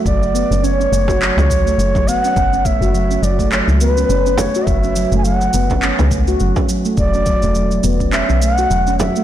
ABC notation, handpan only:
X:1
M:4/4
L:1/16
Q:"Swing 16ths" 1/4=104
K:F#m
V:1 name="Handpan"
F, F, B, C C C A, F F, C F, A, F, F, B, C | C C A, F F, C F, A, F, F, B, C C C A, F | F, C F, A, F, F, B, C C C A, F F, C F, A, | F, C F, A, F, F, B, C C C A, F F, C F, A, |]